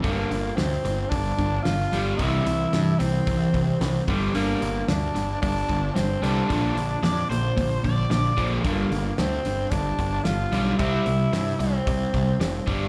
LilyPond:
<<
  \new Staff \with { instrumentName = "Electric slide guitar" } { \time 4/4 \key g \dorian \tempo 4 = 112 r1 | r1 | r1 | r4 d''8 c''4 d''8 d''8. r16 |
r1 | r1 | }
  \new Staff \with { instrumentName = "Tenor saxophone" } { \time 4/4 \key g \dorian bes4 c'4 d'4 f'4 | e'4. c'2 r8 | bes4 d'4 d'4 c'8 d'8~ | d'4. r2 r8 |
bes4 c'4 d'4 f'4 | e'4. c'2 r8 | }
  \new Staff \with { instrumentName = "Overdriven electric guitar" } { \clef bass \time 4/4 \key g \dorian <g, d g>8 <g, d>8 <g, d>8 <g, d>8 <g, d>8 <g, d>8 <g, d>8 <g, d g>8 | <c e g>8 <c e>8 <c e>8 <c e>8 <c e>8 <c e>8 <c e>8 <g, d g>8 | <g, d g>8 <g, d>8 <g, d>8 <g, d>8 <g, d>8 <g, d>8 <g, d>8 <g, d g>8 | <bes, d f>8 <bes, d>8 <bes, d>8 <bes, d>8 <bes, d>8 <bes, d>8 <bes, d>8 <bes, d f>8 |
<g, d g>8 <g, d>8 <g, d>8 <g, d>8 <g, d>8 <g, d>8 <g, d>8 <g, d g>8 | <c g c'>8 <c g>8 <c g>8 <c g>8 <c g>8 <c g>8 <c g>8 <g, d g>8 | }
  \new Staff \with { instrumentName = "Picked electric bass" } { \clef bass \time 4/4 \key g \dorian g,,8 g,,8 d,8 g,,8 g,,8 g,,8 g,,8 g,,8 | c,8 c,8 g,8 c,8 c,8 c,8 c,8 g,,8 | g,,8 g,,8 d,8 g,,8 g,,8 g,,8 g,,8 c,8 | bes,,8 bes,,8 f,8 bes,,8 bes,,8 bes,,8 bes,,8 bes,,8 |
g,,8 g,,8 d,8 g,,8 g,,8 g,,8 g,,8 b,,8 | c,8 c,8 g,8 c,8 c,8 c,8 f,,8 g,,8 | }
  \new DrumStaff \with { instrumentName = "Drums" } \drummode { \time 4/4 <hho bd>8 hho8 <hho sn>8 hho8 <hho bd>8 <hho bd>8 <hho sn>8 hho8 | <hho bd>8 hho8 <hho sn>8 <hho sn>8 <hho bd>8 <hho bd>8 <hho sn>8 <hho bd>8 | hho8 hho8 <hho sn>8 <hho sn>8 <hho bd>8 <hho bd>8 <hho sn>8 hho8 | <hho bd>8 hho8 <hho sn>8 hho8 <hho bd>8 <hho bd>8 <hho sn>8 <hho bd>8 |
<hho bd>8 hho8 <hho sn>8 hho8 <hho bd>8 <hho bd>8 <hho sn>8 hho8 | <hho bd>8 hho8 <hho sn>8 hho8 <hho bd>8 <hho bd>8 <hho sn>8 <hho bd>8 | }
>>